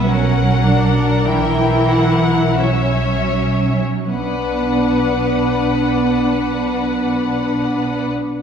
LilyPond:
<<
  \new Staff \with { instrumentName = "Violin section" } { \time 3/4 \key b \minor \tempo 4 = 42 fis''4 g''8 fis''8 e''4 | fis''2. | }
  \new Staff \with { instrumentName = "Violin section" } { \time 3/4 \key b \minor ais'2 cis''4 | b'2. | }
  \new Staff \with { instrumentName = "Viola section" } { \time 3/4 \key b \minor cis'8 d'8 e'4 cis'4 | d'2. | }
  \new Staff \with { instrumentName = "Cello section" } { \clef bass \time 3/4 \key b \minor fis4 e4 fis4 | b2. | }
  \new Staff \with { instrumentName = "Double bass section" } { \clef bass \time 3/4 \key b \minor b,,2. | b,,2. | }
>>